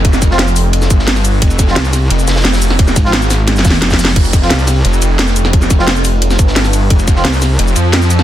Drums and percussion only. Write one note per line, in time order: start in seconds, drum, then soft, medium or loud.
0.05 kick loud
0.05 closed hi-hat medium
0.05 ride medium
0.13 snare soft
0.13 shaker soft
0.22 kick loud
0.22 snare soft
0.22 closed hi-hat medium
0.22 ride medium
0.22 shaker medium
0.31 snare medium
0.38 snare loud
0.38 closed hi-hat loud
0.38 ride medium
0.48 shaker soft
0.56 open hi-hat medium
0.56 ride medium
0.56 shaker medium
0.73 closed hi-hat medium
0.73 ride medium
0.82 snare soft
0.82 shaker soft
0.90 kick loud
0.90 closed hi-hat medium
0.90 ride medium
0.90 shaker medium
0.99 snare soft
1.07 snare loud
1.07 closed hi-hat medium
1.07 open hi-hat medium
1.16 snare soft
1.16 ride soft
1.16 shaker soft
1.24 closed hi-hat medium
1.24 ride medium
1.24 shaker medium
1.42 kick loud
1.42 closed hi-hat loud
1.42 ride medium
1.50 ride soft
1.50 shaker soft
1.59 kick loud
1.59 snare soft
1.59 closed hi-hat medium
1.59 ride medium
1.59 shaker medium
1.67 snare medium
1.76 snare loud
1.76 closed hi-hat loud
1.76 open hi-hat medium
1.84 ride soft
1.84 shaker soft
1.93 snare soft
1.93 closed hi-hat medium
1.93 ride medium
1.93 shaker medium
2.10 closed hi-hat loud
2.10 ride medium
2.19 shaker soft
2.28 snare loud
2.28 closed hi-hat medium
2.28 open hi-hat medium
2.28 shaker medium
2.36 snare loud
2.36 open hi-hat medium
2.44 snare loud
2.44 closed hi-hat medium
2.44 open hi-hat medium
2.53 snare loud
2.53 open hi-hat medium
2.53 shaker soft
2.62 closed hi-hat medium
2.62 shaker medium
2.70 snare medium
2.79 kick loud
2.79 closed hi-hat loud
2.79 ride loud
2.88 snare soft
2.88 shaker soft
2.96 kick loud
2.96 snare soft
2.96 closed hi-hat medium
2.96 ride medium
2.96 shaker medium
3.05 snare medium
3.13 snare loud
3.13 closed hi-hat loud
3.13 ride medium
3.22 shaker soft
3.30 snare soft
3.30 snare medium
3.30 open hi-hat medium
3.30 ride medium
3.30 shaker medium
3.48 snare medium
3.48 closed hi-hat loud
3.48 ride medium
3.56 snare soft
3.56 shaker soft
3.59 snare medium
3.65 kick loud
3.65 snare loud
3.65 closed hi-hat medium
3.65 open hi-hat medium
3.65 shaker medium
3.70 snare medium
3.70 ride soft
3.82 snare medium
3.82 closed hi-hat loud
3.82 ride medium
3.90 kick medium
3.90 snare loud
3.90 open hi-hat medium
3.90 shaker soft
3.93 snare medium
3.99 snare loud
3.99 closed hi-hat medium
3.99 open hi-hat medium
3.99 shaker medium
4.05 snare loud
4.05 open hi-hat medium
4.08 snare loud
4.16 kick loud
4.16 closed hi-hat loud
4.16 ride medium
4.16 crash medium
4.25 ride soft
4.25 shaker soft
4.33 kick loud
4.33 snare soft
4.33 closed hi-hat medium
4.33 ride medium
4.33 shaker medium
4.42 snare medium
4.50 snare loud
4.50 closed hi-hat loud
4.50 open hi-hat medium
4.59 ride soft
4.59 shaker soft
4.67 snare medium
4.67 closed hi-hat medium
4.67 ride medium
4.67 shaker medium
4.84 closed hi-hat loud
4.84 ride medium
4.93 shaker soft
5.02 closed hi-hat medium
5.02 ride medium
5.02 shaker medium
5.19 snare loud
5.19 closed hi-hat loud
5.19 ride medium
5.27 snare medium
5.27 shaker soft
5.36 closed hi-hat medium
5.36 ride medium
5.36 shaker medium
5.45 snare medium
5.45 ride soft
5.53 kick loud
5.53 closed hi-hat medium
5.53 ride medium
5.62 snare soft
5.62 shaker soft
5.70 kick loud
5.70 snare soft
5.70 closed hi-hat medium
5.70 ride medium
5.70 shaker medium
5.79 snare medium
5.88 snare loud
5.88 closed hi-hat loud
5.88 ride medium
5.96 shaker soft
6.05 open hi-hat medium
6.05 ride medium
6.05 shaker medium
6.22 closed hi-hat loud
6.22 ride medium
6.30 snare soft
6.30 shaker soft
6.39 kick loud
6.39 closed hi-hat medium
6.39 ride medium
6.39 shaker medium
6.47 snare soft
6.56 snare loud
6.56 closed hi-hat loud
6.56 open hi-hat medium
6.65 snare soft
6.65 ride soft
6.65 shaker soft
6.73 closed hi-hat medium
6.73 ride medium
6.73 shaker medium
6.90 kick loud
6.90 closed hi-hat medium
6.90 ride medium
6.99 ride soft
6.99 shaker soft
7.07 kick loud
7.07 snare soft
7.07 closed hi-hat medium
7.07 ride medium
7.07 shaker medium
7.16 snare soft
7.25 snare loud
7.25 closed hi-hat medium
7.25 open hi-hat medium
7.33 ride soft
7.33 shaker soft
7.42 snare medium
7.42 closed hi-hat medium
7.42 ride medium
7.42 shaker medium
7.59 closed hi-hat medium
7.59 ride medium
7.68 shaker soft
7.76 closed hi-hat medium
7.76 ride medium
7.76 shaker medium
7.93 snare loud
7.93 closed hi-hat medium
7.93 ride medium
8.02 snare soft
8.02 shaker soft
8.10 closed hi-hat medium
8.10 ride medium
8.10 shaker medium
8.19 snare medium
8.19 ride soft